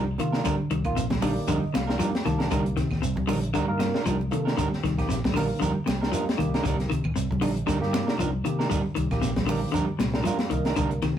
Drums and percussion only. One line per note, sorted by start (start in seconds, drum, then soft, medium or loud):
0.18 closed hi-hat soft
0.18 low conga medium
0.18 shekere soft
0.33 snare medium
0.45 kick loud
0.45 closed hi-hat medium
0.45 claves medium
0.45 shekere medium
0.71 kick medium
0.71 closed hi-hat medium
0.71 shekere soft
0.85 kick medium
0.85 closed hi-hat soft
0.85 claves medium
0.97 closed hi-hat medium
0.97 shekere medium
1.10 kick medium
1.10 snare medium
1.10 closed hi-hat soft
1.10 high conga medium
1.10 low conga medium
1.22 open hi-hat medium
1.22 high conga loud
1.22 low conga medium
1.22 claves medium
1.22 shekere soft
1.48 kick medium
1.48 closed hi-hat medium
1.48 shekere medium
1.74 snare medium
1.74 closed hi-hat soft
1.74 high conga loud
1.74 claves medium
1.74 shekere soft
1.89 snare medium
2.00 closed hi-hat medium
2.00 high conga medium
2.00 claves medium
2.00 shekere medium
2.15 snare medium
2.15 closed hi-hat soft
2.26 kick medium
2.26 snare soft
2.26 closed hi-hat soft
2.26 low conga medium
2.26 shekere soft
2.40 snare medium
2.40 closed hi-hat soft
2.51 kick medium
2.51 closed hi-hat medium
2.51 high conga soft
2.51 claves medium
2.51 shekere medium
2.66 closed hi-hat soft
2.77 kick medium
2.77 snare soft
2.77 closed hi-hat soft
2.77 shekere soft
2.91 kick medium
2.91 snare soft
2.91 claves medium
3.03 closed hi-hat medium
3.03 high conga soft
3.03 shekere medium
3.17 kick medium
3.17 high conga medium
3.28 open hi-hat medium
3.28 high conga medium
3.28 low conga medium
3.28 claves medium
3.28 shekere soft
3.43 closed hi-hat soft
3.55 kick medium
3.55 closed hi-hat medium
3.55 shekere medium
3.80 snare medium
3.80 closed hi-hat soft
3.80 high conga medium
3.80 claves medium
3.80 shekere soft
3.95 snare medium
4.06 closed hi-hat medium
4.06 high conga medium
4.06 claves medium
4.06 shekere medium
4.21 high conga medium
4.31 closed hi-hat soft
4.31 low conga medium
4.31 shekere soft
4.47 snare medium
4.58 kick medium
4.58 closed hi-hat medium
4.58 claves medium
4.58 shekere medium
4.73 snare soft
4.84 kick medium
4.84 snare soft
4.84 closed hi-hat medium
4.84 shekere soft
4.98 kick medium
4.98 snare soft
4.98 closed hi-hat soft
4.98 claves medium
5.10 snare soft
5.10 closed hi-hat medium
5.10 high conga soft
5.10 shekere medium
5.24 kick medium
5.24 snare medium
5.24 closed hi-hat soft
5.24 high conga medium
5.24 low conga medium
5.35 open hi-hat medium
5.35 high conga medium
5.35 low conga medium
5.35 claves medium
5.35 shekere soft
5.62 kick medium
5.62 closed hi-hat medium
5.62 shekere medium
5.87 snare medium
5.87 closed hi-hat medium
5.87 high conga medium
5.87 claves medium
5.87 shekere soft
6.03 snare medium
6.13 closed hi-hat medium
6.13 high conga medium
6.13 claves medium
6.13 shekere medium
6.29 snare medium
6.29 closed hi-hat soft
6.39 kick medium
6.39 closed hi-hat soft
6.39 low conga medium
6.39 shekere soft
6.54 snare medium
6.54 closed hi-hat soft
6.64 kick medium
6.64 closed hi-hat medium
6.64 claves medium
6.64 shekere medium
6.80 snare soft
6.80 closed hi-hat soft
6.91 kick medium
6.91 closed hi-hat soft
6.91 shekere soft
7.04 kick medium
7.04 claves medium
7.16 closed hi-hat medium
7.16 high conga soft
7.16 shekere medium
7.31 kick medium
7.31 high conga medium
7.42 open hi-hat medium
7.42 high conga medium
7.42 low conga medium
7.42 claves medium
7.42 shekere soft
7.57 closed hi-hat soft
7.68 kick medium
7.68 snare soft
7.68 closed hi-hat medium
7.68 shekere medium
7.82 snare soft
7.94 snare medium
7.94 closed hi-hat soft
7.94 high conga medium
7.94 claves medium
7.94 shekere soft
8.08 snare medium
8.19 closed hi-hat medium
8.19 high conga medium
8.19 claves medium
8.19 shekere medium
8.45 closed hi-hat soft
8.45 low conga medium
8.45 shekere soft
8.60 snare medium
8.71 kick medium
8.71 closed hi-hat medium
8.71 claves medium
8.71 shekere medium
8.96 kick medium
8.96 closed hi-hat medium
8.96 shekere soft
9.11 kick medium
9.11 snare soft
9.11 closed hi-hat soft
9.11 claves medium
9.23 snare soft
9.23 closed hi-hat medium
9.23 high conga soft
9.23 shekere medium
9.36 kick medium
9.36 snare medium
9.36 closed hi-hat soft
9.36 high conga medium
9.48 open hi-hat medium
9.48 high conga medium
9.48 low conga medium
9.48 claves medium
9.48 shekere soft
9.74 kick medium
9.74 closed hi-hat medium
9.74 shekere medium
10.00 snare medium
10.00 closed hi-hat medium
10.00 high conga medium
10.00 claves medium
10.00 shekere soft
10.14 snare medium
10.25 closed hi-hat medium
10.25 high conga medium
10.25 claves medium
10.25 shekere medium
10.39 snare medium
10.39 closed hi-hat soft
10.51 kick medium
10.51 closed hi-hat medium
10.51 low conga medium
10.51 shekere soft
10.65 snare medium
10.65 closed hi-hat soft
10.76 kick loud
10.76 closed hi-hat medium
10.76 claves medium
10.76 shekere medium
10.91 closed hi-hat soft
11.02 kick medium
11.02 snare soft
11.02 closed hi-hat soft
11.02 shekere soft